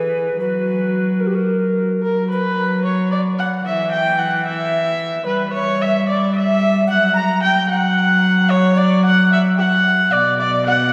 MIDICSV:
0, 0, Header, 1, 4, 480
1, 0, Start_track
1, 0, Tempo, 546448
1, 338, Time_signature, 6, 3, 24, 8
1, 2260, Tempo, 537634
1, 9720, End_track
2, 0, Start_track
2, 0, Title_t, "Recorder"
2, 0, Program_c, 0, 74
2, 0, Note_on_c, 0, 71, 84
2, 322, Note_off_c, 0, 71, 0
2, 350, Note_on_c, 0, 71, 85
2, 1058, Note_on_c, 0, 70, 64
2, 1071, Note_off_c, 0, 71, 0
2, 1117, Note_on_c, 0, 67, 53
2, 1130, Note_off_c, 0, 70, 0
2, 1185, Note_on_c, 0, 70, 68
2, 1198, Note_off_c, 0, 67, 0
2, 1785, Note_off_c, 0, 70, 0
2, 1790, Note_on_c, 0, 70, 75
2, 1843, Note_off_c, 0, 70, 0
2, 2038, Note_on_c, 0, 71, 86
2, 2502, Note_on_c, 0, 73, 77
2, 2516, Note_off_c, 0, 71, 0
2, 2743, Note_off_c, 0, 73, 0
2, 2752, Note_on_c, 0, 74, 83
2, 2806, Note_off_c, 0, 74, 0
2, 2994, Note_on_c, 0, 78, 87
2, 3222, Note_off_c, 0, 78, 0
2, 3227, Note_on_c, 0, 76, 82
2, 3467, Note_on_c, 0, 79, 85
2, 3480, Note_off_c, 0, 76, 0
2, 3696, Note_off_c, 0, 79, 0
2, 3701, Note_on_c, 0, 78, 76
2, 3927, Note_off_c, 0, 78, 0
2, 3933, Note_on_c, 0, 76, 83
2, 4647, Note_on_c, 0, 71, 87
2, 4661, Note_off_c, 0, 76, 0
2, 4897, Note_off_c, 0, 71, 0
2, 4910, Note_on_c, 0, 73, 82
2, 5139, Note_off_c, 0, 73, 0
2, 5144, Note_on_c, 0, 76, 78
2, 5381, Note_off_c, 0, 76, 0
2, 5386, Note_on_c, 0, 74, 81
2, 5614, Note_off_c, 0, 74, 0
2, 5620, Note_on_c, 0, 76, 96
2, 6092, Note_off_c, 0, 76, 0
2, 6096, Note_on_c, 0, 78, 89
2, 6151, Note_off_c, 0, 78, 0
2, 6335, Note_on_c, 0, 82, 95
2, 6578, Note_on_c, 0, 79, 84
2, 6591, Note_off_c, 0, 82, 0
2, 6808, Note_off_c, 0, 79, 0
2, 6813, Note_on_c, 0, 78, 94
2, 7522, Note_off_c, 0, 78, 0
2, 7554, Note_on_c, 0, 73, 98
2, 7774, Note_off_c, 0, 73, 0
2, 7779, Note_on_c, 0, 74, 86
2, 7833, Note_off_c, 0, 74, 0
2, 8020, Note_on_c, 0, 78, 84
2, 8255, Note_off_c, 0, 78, 0
2, 8267, Note_on_c, 0, 76, 83
2, 8498, Note_off_c, 0, 76, 0
2, 8503, Note_on_c, 0, 79, 89
2, 8545, Note_on_c, 0, 78, 97
2, 8554, Note_off_c, 0, 79, 0
2, 8806, Note_off_c, 0, 78, 0
2, 8992, Note_on_c, 0, 74, 93
2, 9209, Note_off_c, 0, 74, 0
2, 9231, Note_on_c, 0, 76, 83
2, 9275, Note_on_c, 0, 74, 90
2, 9284, Note_off_c, 0, 76, 0
2, 9469, Note_on_c, 0, 78, 90
2, 9482, Note_off_c, 0, 74, 0
2, 9720, Note_off_c, 0, 78, 0
2, 9720, End_track
3, 0, Start_track
3, 0, Title_t, "Viola"
3, 0, Program_c, 1, 41
3, 0, Note_on_c, 1, 68, 59
3, 351, Note_on_c, 1, 66, 61
3, 364, Note_off_c, 1, 68, 0
3, 1067, Note_off_c, 1, 66, 0
3, 1071, Note_on_c, 1, 66, 52
3, 1602, Note_off_c, 1, 66, 0
3, 1782, Note_on_c, 1, 70, 91
3, 2005, Note_off_c, 1, 70, 0
3, 2025, Note_on_c, 1, 71, 105
3, 2493, Note_off_c, 1, 71, 0
3, 2508, Note_on_c, 1, 73, 84
3, 2741, Note_off_c, 1, 73, 0
3, 2746, Note_on_c, 1, 74, 93
3, 2818, Note_off_c, 1, 74, 0
3, 2985, Note_on_c, 1, 78, 95
3, 3057, Note_off_c, 1, 78, 0
3, 3229, Note_on_c, 1, 76, 96
3, 3455, Note_off_c, 1, 76, 0
3, 3460, Note_on_c, 1, 79, 103
3, 3700, Note_on_c, 1, 78, 94
3, 3714, Note_off_c, 1, 79, 0
3, 3938, Note_off_c, 1, 78, 0
3, 3943, Note_on_c, 1, 76, 103
3, 4650, Note_off_c, 1, 76, 0
3, 4659, Note_on_c, 1, 71, 98
3, 4898, Note_off_c, 1, 71, 0
3, 4901, Note_on_c, 1, 73, 109
3, 5154, Note_on_c, 1, 76, 105
3, 5168, Note_off_c, 1, 73, 0
3, 5391, Note_off_c, 1, 76, 0
3, 5396, Note_on_c, 1, 74, 93
3, 5627, Note_off_c, 1, 74, 0
3, 5638, Note_on_c, 1, 76, 108
3, 6101, Note_off_c, 1, 76, 0
3, 6124, Note_on_c, 1, 78, 108
3, 6349, Note_off_c, 1, 78, 0
3, 6357, Note_on_c, 1, 82, 112
3, 6585, Note_off_c, 1, 82, 0
3, 6597, Note_on_c, 1, 79, 109
3, 6825, Note_off_c, 1, 79, 0
3, 6830, Note_on_c, 1, 78, 108
3, 7552, Note_on_c, 1, 73, 111
3, 7565, Note_off_c, 1, 78, 0
3, 7797, Note_on_c, 1, 74, 106
3, 7810, Note_off_c, 1, 73, 0
3, 8028, Note_off_c, 1, 74, 0
3, 8044, Note_on_c, 1, 78, 116
3, 8267, Note_off_c, 1, 78, 0
3, 8290, Note_on_c, 1, 76, 101
3, 8362, Note_off_c, 1, 76, 0
3, 8520, Note_on_c, 1, 78, 113
3, 9002, Note_on_c, 1, 74, 108
3, 9015, Note_off_c, 1, 78, 0
3, 9230, Note_off_c, 1, 74, 0
3, 9239, Note_on_c, 1, 74, 106
3, 9464, Note_off_c, 1, 74, 0
3, 9482, Note_on_c, 1, 78, 111
3, 9706, Note_off_c, 1, 78, 0
3, 9720, End_track
4, 0, Start_track
4, 0, Title_t, "Cello"
4, 0, Program_c, 2, 42
4, 0, Note_on_c, 2, 52, 68
4, 311, Note_off_c, 2, 52, 0
4, 340, Note_on_c, 2, 54, 65
4, 1583, Note_off_c, 2, 54, 0
4, 1785, Note_on_c, 2, 54, 75
4, 3188, Note_off_c, 2, 54, 0
4, 3226, Note_on_c, 2, 52, 79
4, 4637, Note_off_c, 2, 52, 0
4, 4671, Note_on_c, 2, 55, 76
4, 6104, Note_on_c, 2, 54, 85
4, 6118, Note_off_c, 2, 55, 0
4, 8981, Note_on_c, 2, 47, 89
4, 8995, Note_off_c, 2, 54, 0
4, 9720, Note_off_c, 2, 47, 0
4, 9720, End_track
0, 0, End_of_file